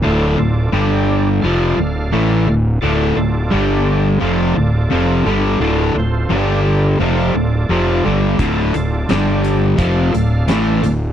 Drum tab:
HH |--------|--------|--------|xxxxxxxx|
SD |--------|--------|--------|--o---o-|
BD |--------|--------|--------|o---o---|